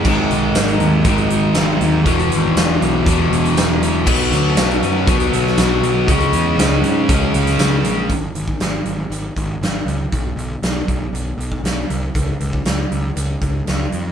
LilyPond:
<<
  \new Staff \with { instrumentName = "Distorted electric guitar" } { \clef bass \time 4/4 \key cis \dorian \tempo 4 = 119 <gis, dis gis>2~ <gis, dis gis>8 <gis, dis gis>8 <gis, dis gis>4 | <e, b, e>2~ <e, b, e>8 <e, b, e>8 <e, b, e>4 | <b, fis b>2~ <b, fis b>8 <b, fis b>8 <b, fis b>4 | <cis gis cis'>2~ <cis gis cis'>8 <cis gis cis'>8 <cis gis cis'>4 |
r1 | r1 | r1 | }
  \new Staff \with { instrumentName = "Overdriven electric guitar" } { \clef bass \time 4/4 \key cis \dorian <gis, dis gis>2 <gis, dis gis>2 | <e, b, e>2 <e, b, e>2 | <b, fis b>2 <b, fis b>2 | <cis gis cis'>2 <cis gis cis'>2 |
r1 | r1 | r1 | }
  \new Staff \with { instrumentName = "Picked electric bass" } { \clef bass \time 4/4 \key cis \dorian gis,,8 b,,8 gis,,8 dis,8 gis,,8 gis,,8 gis,,8 dis,8 | e,,8 gis,,8 e,,8 b,,8 e,,8 e,,8 e,,8 e,,8 | b,,8 d,8 b,,8 fis,8 b,,8 b,,8 b,,8 b,,8 | cis,8 e,8 cis,8 gis,8 cis,8 cis,8 cis,8 ais,,8 |
gis,,8 gis,,8 gis,,8 gis,,8 gis,,8 gis,,8 gis,,8 cis,8 | b,,8 b,,8 b,,8 b,,8 b,,8 b,,8 b,,8 bis,,8 | cis,8 cis,8 cis,8 cis,8 cis,8 cis,8 cis,8 eis,8 | }
  \new DrumStaff \with { instrumentName = "Drums" } \drummode { \time 4/4 <cymc bd>8 hh8 <hh sn>16 hh16 hh8 <hh bd>16 hh16 hh8 <hh sn>8 hh8 | <hh bd>16 hh16 hh8 <hh sn>8 hh8 <hh bd>8 hh16 hh16 <hh sn>8 hh8 | <cymc bd>8 hh8 <hh sn>16 hh16 hh8 <hh bd>16 hh16 hh16 sn16 <hh sn>8 hh8 | <hh bd>16 hh16 hh8 <hh sn>8 hh8 <hh bd>8 hh16 <hh sn>16 <hh sn>8 hh8 |
<hh bd>8 hh16 bd16 <hh sn>8 hh8 hh8 <hh bd>8 <hh sn>8 hh8 | <hh bd>8 hh8 <hh sn>8 <hh bd>8 hh8 hh16 bd16 <hh sn>8 hh8 | <hh bd>8 hh16 bd16 <hh sn>8 hh8 hh8 <hh bd>8 <hh sn>8 hh8 | }
>>